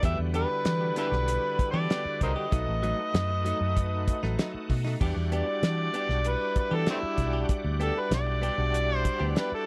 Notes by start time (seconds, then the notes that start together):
0.01 E2 D3 G3 B3 D4 E4 F#4 G4 B4 E5, kick, closed hi-hat
0.19 E2, muted clean electric guitar stroke
0.34 B3 D4 G4 B4, closed hi-hat
0.50 muted clean electric guitar stroke
0.65 E3, snare, closed hi-hat
0.81 muted clean electric guitar stroke
0.96 B3 D4 E4 G4 B4, closed hi-hat
1.12 B1, muted clean electric guitar stroke, snare
1.28 muted clean electric guitar stroke, closed hi-hat
1.59 muted clean electric guitar stroke, kick, closed hi-hat
1.71 E3 D4 G4 D5
1.75 B3
1.89 B3 D4 G4, snare, closed hi-hat
2.05 muted clean electric guitar stroke, muted fingered electric bass stroke
2.20 C2 A#4 C5 D#5, muted clean electric guitar stroke, kick, closed hi-hat
2.36 D4 G4
2.51 B1 F#3 A3 D#4 F#4 A4 B4, kick, closed hi-hat
2.68 A1
2.83 F#3 A3 D#4, closed hi-hat
2.99 muted clean electric guitar stroke
3.14 F#2, snare, closed hi-hat
3.30 muted clean electric guitar stroke
3.45 F#3 A3 D#4, closed hi-hat
3.61 F#2, muted clean electric guitar stroke
3.76 muted clean electric guitar stroke, kick, closed hi-hat
4.07 muted clean electric guitar stroke, kick, closed hi-hat
4.23 A1 F#3 A3 D#4, snare
4.38 F#3 A3 D#4, snare, closed hi-hat
4.54 muted clean electric guitar stroke, muted fingered electric bass stroke
4.70 B2, muted clean electric guitar stroke, kick, open hi-hat
4.85 A3 D#4, snare
5.00 E2 G3 B3 D4 E4 F#4 G4 D5, kick, crash
5.16 E2, muted clean electric guitar stroke
5.32 B3 D4 G4 D5, closed hi-hat
5.47 muted clean electric guitar stroke
5.63 E3, snare, closed hi-hat
5.78 muted clean electric guitar stroke
5.94 B3 D4 G4, closed hi-hat
6.09 B1, muted clean electric guitar stroke, snare
6.24 B4, muted clean electric guitar stroke, closed hi-hat
6.56 B4, muted clean electric guitar stroke, kick, closed hi-hat
6.71 E3 B3 D4 G4 A4
6.86 A3 B3 C4 D4 E4 G4, snare, closed hi-hat
7.02 muted clean electric guitar stroke, muted fingered electric bass stroke
7.18 B1, muted clean electric guitar stroke, kick, closed hi-hat
7.33 D4 G4
7.49 kick, closed hi-hat
7.64 D2, muted clean electric guitar stroke
7.80 B3 D4 G4 A4, closed hi-hat
7.95 B4, muted clean electric guitar stroke
8.11 B1 D5, snare, closed hi-hat
8.27 muted clean electric guitar stroke
8.42 B3 D4 G4, closed hi-hat
8.57 B1, muted clean electric guitar stroke
8.73 muted clean electric guitar stroke, closed hi-hat
8.96 C5
9.04 muted clean electric guitar stroke, kick, closed hi-hat
9.20 D2 B3 D4 G4
9.35 B3 D4 G4 B4, snare, closed hi-hat
9.51 A4, muted clean electric guitar stroke, muted fingered electric bass stroke